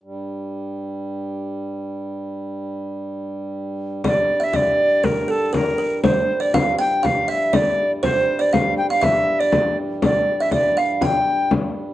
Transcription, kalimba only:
X:1
M:2/4
L:1/16
Q:1/4=120
K:Gdor
V:1 name="Kalimba"
z8 | z8 | z8 | z8 |
d3 e d4 | B2 A2 B2 B2 | c3 d f2 g2 | f2 e2 d3 z |
c3 d f3 f | e3 d3 z2 | d3 e d2 f2 | g4 z4 |]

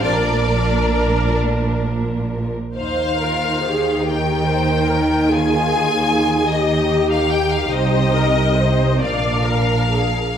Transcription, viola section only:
X:1
M:6/8
L:1/16
Q:3/8=46
K:Eb
V:1 name="Viola section"
B8- B z3 | c2 B2 A2 G2 c2 B2 | A6 G6 | c2 B2 c2 d2 B2 A2 |]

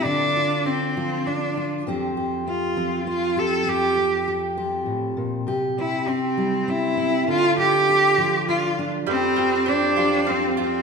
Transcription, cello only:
X:1
M:3/4
L:1/16
Q:1/4=100
K:Dm
V:1 name="Cello"
D4 C4 D3 z | z4 F4 F2 A2 | G4 z8 | z2 E2 C4 E4 |
F2 G6 F3 z | C4 D4 C2 C2 |]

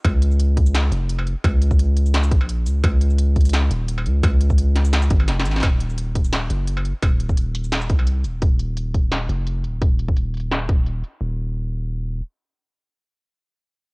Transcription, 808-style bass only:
X:1
M:4/4
L:1/8
Q:"Swing 16ths" 1/4=172
K:Ebdor
V:1 name="808-style bass" clef=bass
D,,4- D,, F,,,2 z | D,,4- D,, B,,,2 D,, | D,,4- D,, E,,,2 D,, | D,,4- D,, A,,, F,,, A,,, |
E,,,4- E,,, G,,,2 z | E,,,4- E,,, C,,2 E,,, | E,,,4- E,,, F,,,2 E,,, | E,,,4- E,,, E,,,2 z |
E,,,6 z2 | z8 |]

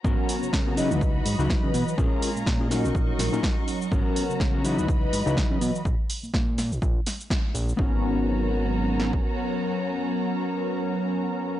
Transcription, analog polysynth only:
X:1
M:4/4
L:1/8
Q:"Swing 16ths" 1/4=124
K:G#m
V:1 name="Analog polysynth"
[F,B,CA]3 [E,F,Bd]4- [E,F,Bd] | [G,C^EA]3 [F,CDA]4- [F,CDA] | [B,CA]3 [E,F,Bd]4- [E,F,Bd] | z8 |
[F,B,CA]8- | [F,B,CA]8 |]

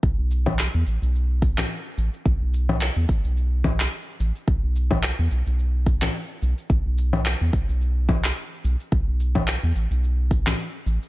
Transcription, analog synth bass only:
X:1
M:4/4
L:1/16
Q:"Swing 16ths" 1/4=108
K:A
V:1 name="Analog synth bass" clef=bass
B,,, B,,,4 E,, A,,, B,,,4- B,,, z2 A,,, z | B,,, B,,,4 E,, A,,, B,,,4- B,,, z2 A,,, z | B,,, B,,,4 E,, B,,, B,,,4- B,,, z2 B,,, z | B,,, B,,,4 E,, B,,, B,,,4- B,,, z2 B,,, z |
B,,, B,,,4 E,, A,,, B,,,4- B,,, z2 A,,, z |]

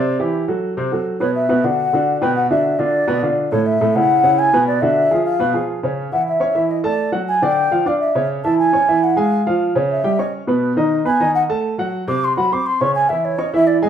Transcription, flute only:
X:1
M:4/4
L:1/8
Q:1/4=207
K:Bdor
V:1 name="Flute"
d z6 z | c e2 f4 =g | f e2 d4 z | c e2 f3 g2 |
d e3 =f3 z | [K:C#m] z2 f e3 d =d- | =d z g =g3 =f e- | e z a g3 f ^e- |
^e z3 =e2 d z | z4 g2 f z | z3 =d' =c' b d' c' | c' g e c d e =d ^d |]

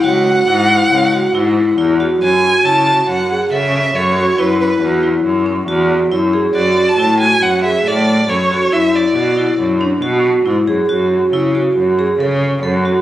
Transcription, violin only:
X:1
M:5/4
L:1/16
Q:1/4=138
K:F#m
V:1 name="Violin"
f16 z4 | g4 a4 f4 e4 c4 | B2 B4 z12 z2 | d3 a3 g2 f2 e2 d4 c4 |
e2 d6 z12 | z16 z4 |]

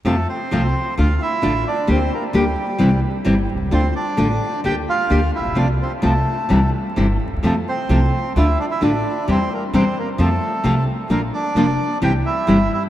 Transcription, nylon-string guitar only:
X:1
M:4/4
L:1/8
Q:1/4=130
K:F
V:1 name="Nylon-string guitar"
[C,F,A,CF] z [C,F,A,CF] z [D,A,DF] z [D,A,DF] z | [D,B,DG] z [D,B,DG] z [C,E,G,CE] z [C,E,G,CE] z | [D,A,DF] z [D,A,DF] z [D,B,DG] z [D,B,DG] z | [C,F,A,CF] z [C,F,A,CF] z [C,E,G,CE] z [C,E,G,CE] z |
[C,F,A,CF] z [C,F,A,CF] z [D,A,DF] z [D,A,DF] z | [C,E,G,CE] z [C,E,G,CE] z [C,F,A,CF] z [C,F,A,CF] z | [F,B,DF] z [F,B,DF] z [C,E,G,CE] z [C,E,G,CE] z |]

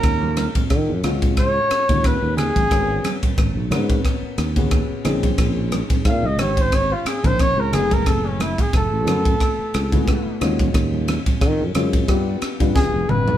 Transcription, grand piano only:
X:1
M:4/4
L:1/16
Q:"Swing 16ths" 1/4=90
K:D#m
V:1 name="Grand piano"
[G,CEF]4- [G,CEF] z [G,CEF]4 z [G,CEF]4 z | [B,CFA]4- [B,CFA] z [B,CFA]4 z [B,CFG]3 [^B,CDG]2- | [^B,CDG]4- [B,CDG] z [B,CD=G]4 z [B,CDA]3 [=A,=B,=E^G]2- | [=A,B,=EG]4- [A,B,EG] z [A,B,EF]4 z [A,B,EF]3 [G,C^EF]2- |
[G,CEF]4- [G,CEF] z [G,CEG]2 [B,=D=F=G]3 [=G,B,DF]4 z |]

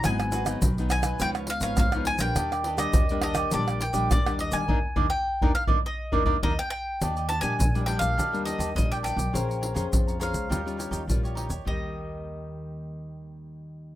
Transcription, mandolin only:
X:1
M:4/4
L:1/16
Q:1/4=103
K:Eb
V:1 name="Mandolin"
a4 z2 a2 g2 f f f2 a g- | g3 e3 e2 d2 g2 d2 e a- | a3 g3 f2 e4 e g g2- | g2 =a _a3 g f3 e2 e g g2- |
g6 f8 z2 | e16 |]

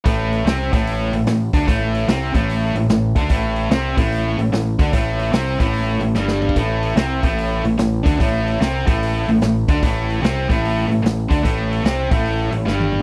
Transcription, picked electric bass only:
X:1
M:4/4
L:1/8
Q:"Swing" 1/4=147
K:Glyd
V:1 name="Picked electric bass" clef=bass
A,,,2 =C,, A,,,2 A,,, A,,, D,, | A,,,2 =C,, A,,,2 A,,, A,,, D,, | A,,,2 =C,, A,,,2 A,,, A,,, D,, | A,,,2 =C,, A,,,2 A,,, G,,,2 |
A,,,2 =C,, A,,,2 A,,, A,,, D,, | A,,,2 =C,, A,,,2 A,,, A,,, D,, | A,,,2 =C,, A,,,2 A,,, A,,, D,, | A,,,2 =C,, A,,,2 A,,, G,,,2 |]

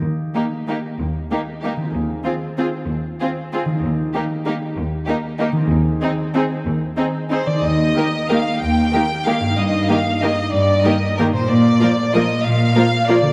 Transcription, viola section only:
X:1
M:3/4
L:1/8
Q:1/4=187
K:Eb
V:1 name="Viola section"
z2 B,2 B,2 | z2 B,2 B,2 | z2 C2 C2 | z2 C2 C2 |
z2 B,2 B,2 | z2 B,2 B,2 | z2 C2 C2 | z2 C2 C2 |
z2 [E,B,]2 [E,B,]2 | z2 [E,B,]2 [E,B,]2 | z2 [E,B,]2 [E,B,]2 | z2 [E,B,]2 [E,B,]2 |
z2 [F,B,]2 [F,B,]2 | z2 [F,B,]2 [F,B,]2 |]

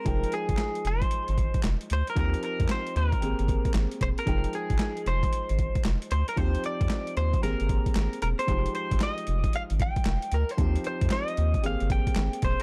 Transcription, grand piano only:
X:1
M:4/4
L:1/8
Q:"Swing 16ths" 1/4=114
K:Fm
V:1 name="Grand piano"
[F,A,Eg]8 | [F,CEG]4 [B,CGA]4 | [F,A,Eg]8 | [F,CEG]4 [B,CGA]4 |
[F,A,EG]8 | [F,CEG]4 [B,CGA]4 |]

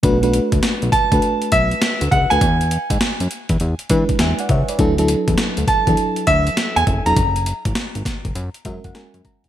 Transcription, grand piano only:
X:1
M:4/4
L:1/16
Q:"Swing 16ths" 1/4=101
K:Bdor
V:1 name="Grand piano"
z6 a4 e4 f g- | g4- g z8 z3 | z6 a4 e3 g2 ^a- | ^a12- a2 z2 |]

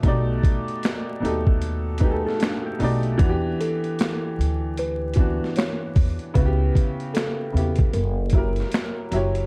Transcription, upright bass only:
X:1
M:4/4
L:1/16
Q:"Swing 16ths" 1/4=76
K:Bm
V:1 name="Upright bass" clef=bass
B,,,2 z4 ^D,,4- D,, z3 B,,,2 | E,,2 z4 D,,4- D,, z3 E,, z | C,,2 z4 E,,2 F,,,4 z2 F,,,2 |]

